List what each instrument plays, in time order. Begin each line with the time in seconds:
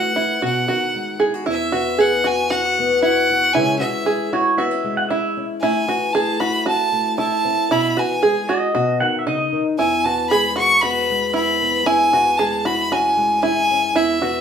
Already playing: steel-string acoustic guitar E3 A3 B3, five-string banjo F#4, fiddle F#5
0.16 five-string banjo E4, steel-string acoustic guitar E4
0.42 steel-string acoustic guitar B2, five-string banjo F#4, fiddle F#5
0.68 steel-string acoustic guitar D#3, five-string banjo F#4
0.95 steel-string acoustic guitar G#3
1.20 steel-string acoustic guitar E4, five-string banjo G#4
1.34 steel-string acoustic guitar F#4
1.46 steel-string acoustic guitar E2, five-string banjo E4
1.51 fiddle E5
1.72 steel-string acoustic guitar E3, five-string banjo F#4
1.98 steel-string acoustic guitar B3, five-string banjo G#4, fiddle F#5
2.24 five-string banjo F#4, steel-string acoustic guitar F#4, fiddle G#5
2.50 steel-string acoustic guitar E4, five-string banjo F#4, fiddle F#5
2.65 steel-string acoustic guitar F#4
2.79 steel-string acoustic guitar B3
3.02 five-string banjo E4, steel-string acoustic guitar F#4, fiddle F#5
3.30 steel-string acoustic guitar F#4
3.53 steel-string acoustic guitar C#3 E3 G#3, five-string banjo E4, fiddle G#5
3.58 steel-string acoustic guitar C#4 E4
3.79 steel-string acoustic guitar E3, five-string banjo F#4, fiddle E5
4.06 steel-string acoustic guitar G#3, five-string banjo G#4
4.33 steel-string acoustic guitar E4, five-string banjo F#4, pedal steel guitar C#5
4.57 steel-string acoustic guitar B3, five-string banjo F#4, pedal steel guitar E5
4.71 steel-string acoustic guitar C#4
4.84 steel-string acoustic guitar G#3
4.97 pedal steel guitar F#5
5.09 five-string banjo E4, steel-string acoustic guitar E4, pedal steel guitar E5
5.37 steel-string acoustic guitar C#4
5.61 steel-string acoustic guitar A2, five-string banjo E4, fiddle G#5
5.88 steel-string acoustic guitar E3, five-string banjo F#4
6.13 steel-string acoustic guitar A3, five-string banjo G#4, fiddle A5
6.40 steel-string acoustic guitar E4, five-string banjo F#4, fiddle B5
6.66 steel-string acoustic guitar C4, five-string banjo F#4, fiddle A5
6.92 steel-string acoustic guitar A3
7.18 five-string banjo E4, steel-string acoustic guitar E4, fiddle A5
7.45 steel-string acoustic guitar C4
7.71 steel-string acoustic guitar B2, five-string banjo E4, fiddle B5
7.97 steel-string acoustic guitar E3, five-string banjo F#4, fiddle G#5
8.23 steel-string acoustic guitar G#3, five-string banjo G#4
8.49 five-string banjo F#4, steel-string acoustic guitar G#4, pedal steel guitar D#5
8.75 steel-string acoustic guitar B2, five-string banjo F#4
9.00 steel-string acoustic guitar D#3, pedal steel guitar F#5
9.19 pedal steel guitar E5
9.26 steel-string acoustic guitar C#3, five-string banjo D#4, pedal steel guitar D#5
9.53 steel-string acoustic guitar D#3
9.78 steel-string acoustic guitar E2, five-string banjo E4, fiddle G#5
10.04 steel-string acoustic guitar E3, five-string banjo F#4, fiddle A5
10.30 steel-string acoustic guitar G#3, five-string banjo G#4, fiddle B5
10.56 five-string banjo F#4, steel-string acoustic guitar G#4, fiddle C#6
10.81 steel-string acoustic guitar B3, five-string banjo F#4, fiddle B5
11.10 steel-string acoustic guitar G#3
11.34 five-string banjo E4, steel-string acoustic guitar G#4, fiddle B5
11.62 steel-string acoustic guitar B3
11.86 steel-string acoustic guitar E2, five-string banjo E4, fiddle G#5
12.13 steel-string acoustic guitar E3, five-string banjo F#4
12.38 steel-string acoustic guitar G#3, five-string banjo G#4, fiddle A5
12.65 steel-string acoustic guitar E4, five-string banjo F#4, fiddle B5
12.91 steel-string acoustic guitar C#4, five-string banjo F#4, fiddle G#5
13.17 steel-string acoustic guitar G#3
13.43 five-string banjo E4, steel-string acoustic guitar E4, fiddle G#5
13.71 steel-string acoustic guitar C#4
13.95 steel-string acoustic guitar E2, five-string banjo E4, fiddle E5
14.22 steel-string acoustic guitar E3, five-string banjo F#4